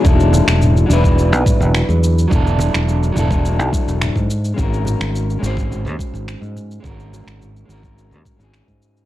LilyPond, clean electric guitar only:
\new Staff \with { instrumentName = "Clean electric guitar" } { \time 4/4 \key e \lydian \tempo 4 = 106 <fis d' e' a'>4. <fis d' e' b'>2~ <fis d' e' b'>8 | <fis d' e' a'>4. <fis d' e' a'>2 r8 | <gis cis' fis' ais'>4. <gis cis' fis' bis'>2~ <gis cis' fis' bis'>8 | <gis cis' fis' ais'>4. <gis cis' fis' ais'>4~ <gis cis' fis' ais'>16 <gis cis' fis' gis'>4~ <gis cis' fis' gis'>16 | }